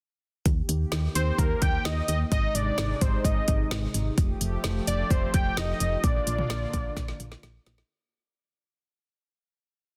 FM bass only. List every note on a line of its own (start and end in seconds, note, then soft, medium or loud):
0.46 0.62 D#2 loud
0.69 0.85 D#2 loud
0.92 1.08 D#2 loud
1.15 1.32 D#2 medium
1.38 1.55 D#2 loud
1.62 1.78 D#2 loud
1.85 2.01 D#2 loud
2.08 2.25 D#2 loud
2.32 2.48 G#1 loud
2.55 2.71 G#1 medium
2.78 2.94 G#1 loud
3.02 3.18 G#1 loud
3.25 3.41 G#1 loud
3.48 3.64 G#1 loud
3.71 3.87 G#1 loud
3.94 4.11 G#1 loud
4.18 4.34 F1 loud
4.41 4.57 F1 medium
4.64 4.80 F1 loud
4.87 5.04 F1 medium
5.11 5.27 F1 loud
5.34 5.50 F1 loud
5.57 5.73 F1 loud
5.80 5.97 F1 loud
6.04 6.20 A#1 loud
6.27 6.43 A#1 loud
6.50 6.66 A#1 loud
6.74 6.90 A#1 medium
6.97 7.13 A#1 loud
7.20 7.36 A#1 loud
7.43 7.59 A#1 loud
7.66 7.83 A#1 medium